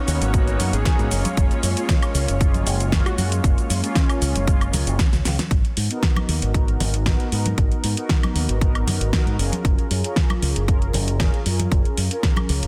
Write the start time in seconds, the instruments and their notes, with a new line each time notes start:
Already playing: analog polysynth A#3 B3 D#4 F#4, string section C#4 C#5
0.08 fingered electric bass D#2, open hi-hat, shaker
0.21 fingered electric bass G#1, closed hi-hat, high conga, shaker
0.34 analog polysynth A#3 B3 D#4 F#4, kick, closed hi-hat, shaker
0.47 closed hi-hat, shaker
0.59 fingered electric bass F#2, open hi-hat, high conga, shaker
0.73 fingered electric bass G#1, analog synth lead G#4, closed hi-hat, shaker
0.85 analog polysynth A#3 B3 D#4 F#4, kick, snare, closed hi-hat, shaker
0.99 fingered electric bass G#2, closed hi-hat, shaker
1.10 fingered electric bass F#1, analog polysynth G#3 A#3 C#4 F4, open hi-hat, high conga, shaker
1.25 closed hi-hat, high conga, shaker
1.37 fingered electric bass F#1, kick, closed hi-hat, shaker
1.51 closed hi-hat, shaker
1.63 fingered electric bass F#2, open hi-hat, shaker
1.76 analog polysynth G#3 A#3 C#4 F4, closed hi-hat, shaker
1.89 kick, snare, closed hi-hat, shaker
2.02 closed hi-hat, high woodblock, shaker
2.15 fingered electric bass C#2, open hi-hat, shaker
2.28 fingered electric bass F#1, closed hi-hat, shaker
2.40 analog polysynth G#3 A#3 C#4 F4, kick, closed hi-hat, shaker
2.54 closed hi-hat, high conga, shaker
2.67 fingered electric bass F#1, open hi-hat, shaker
2.80 closed hi-hat, shaker
2.92 analog polysynth G#3 A#3 C#4 F4, kick, snare, closed hi-hat, shaker
3.06 analog synth lead F#4, closed hi-hat, high woodblock, shaker
3.17 fingered electric bass F#2, analog polysynth G#3 A#3 C#4 F4, analog synth lead F#4, open hi-hat, high conga, shaker
3.32 closed hi-hat, shaker
3.44 fingered electric bass F#1, kick, closed hi-hat, shaker
3.58 closed hi-hat, shaker
3.70 fingered electric bass F#2, open hi-hat, shaker
3.82 analog polysynth G#3 A#3 C#4 F4, closed hi-hat, shaker
3.95 analog synth lead C#4, kick, snare, closed hi-hat, shaker
4.09 closed hi-hat, high woodblock, shaker
4.22 fingered electric bass C#2, open hi-hat, shaker
4.35 fingered electric bass F#1, closed hi-hat, high conga, shaker
4.47 analog polysynth G#3 A#3 C#4 F4, kick, closed hi-hat, shaker
4.61 closed hi-hat, high woodblock, shaker
4.73 fingered electric bass C#2, open hi-hat, high conga, low conga, shaker
4.87 fingered electric bass F#1, closed hi-hat, shaker
4.99 kick, snare, closed hi-hat, shaker
5.13 fingered electric bass C#2, snare, closed hi-hat, shaker
5.25 fingered electric bass C#2, snare, open hi-hat, high conga, shaker
5.39 snare, closed hi-hat, high conga, shaker
5.51 fingered electric bass G#1, kick, closed hi-hat
5.65 closed hi-hat
5.77 fingered electric bass G#2, open hi-hat
5.89 analog polysynth B3 D#4 F#4 A#4, closed hi-hat
6.03 kick, snare, closed hi-hat
6.16 closed hi-hat, high conga, high woodblock
6.29 fingered electric bass D#2, open hi-hat
6.42 fingered electric bass G#1, closed hi-hat
6.54 analog polysynth B3 D#4 F#4 A#4, kick, closed hi-hat
6.68 closed hi-hat
6.80 fingered electric bass G#1, open hi-hat, high conga, low conga
6.94 closed hi-hat
7.06 analog polysynth B3 D#4 F#4 A#4, kick, snare, closed hi-hat
7.20 closed hi-hat
7.31 fingered electric bass G#2, analog polysynth B3 D#4 F#4 A#4, open hi-hat
7.46 closed hi-hat, high conga
7.58 fingered electric bass G#1, kick, closed hi-hat
7.72 closed hi-hat
7.84 fingered electric bass G#2, open hi-hat
7.96 analog polysynth B3 D#4 F#4 A#4, closed hi-hat
8.09 kick, snare, closed hi-hat
8.23 closed hi-hat, high conga, high woodblock
8.35 fingered electric bass D#2, open hi-hat
8.49 fingered electric bass G#1, closed hi-hat
8.61 analog polysynth B3 D#4 F#4 A#4, kick, closed hi-hat
8.75 closed hi-hat, high woodblock
8.87 fingered electric bass F#2, open hi-hat, high conga, low conga
9.01 fingered electric bass G#1, closed hi-hat
9.13 analog polysynth B3 D#4 F#4 A#4, kick, snare, closed hi-hat
9.26 fingered electric bass G#2, closed hi-hat
9.38 fingered electric bass F#1, analog polysynth C#4 F4 G#4 A#4, open hi-hat
9.52 closed hi-hat, high conga
9.65 fingered electric bass F#1, kick, closed hi-hat
9.78 closed hi-hat
9.91 fingered electric bass F#2, open hi-hat
10.04 analog polysynth C#4 F4 G#4 A#4, closed hi-hat
10.16 kick, snare, closed hi-hat
10.30 closed hi-hat, high conga, high woodblock
10.42 fingered electric bass C#2, open hi-hat
10.56 fingered electric bass F#1, closed hi-hat
10.68 analog polysynth C#4 F4 G#4 A#4, kick, closed hi-hat
10.82 closed hi-hat
10.93 fingered electric bass F#1, open hi-hat, high conga, low conga
11.08 closed hi-hat
11.20 analog polysynth C#4 F4 G#4 A#4, kick, snare, closed hi-hat
11.34 closed hi-hat
11.45 fingered electric bass F#2, analog polysynth C#4 F4 G#4 A#4, open hi-hat
11.59 closed hi-hat, high conga
11.72 fingered electric bass F#1, kick, closed hi-hat
11.85 closed hi-hat
11.97 fingered electric bass F#2, open hi-hat
12.10 analog polysynth C#4 F4 G#4 A#4, closed hi-hat
12.23 kick, snare, closed hi-hat
12.37 closed hi-hat, high conga, high woodblock
12.49 fingered electric bass C#2, open hi-hat
12.63 fingered electric bass F#1, closed hi-hat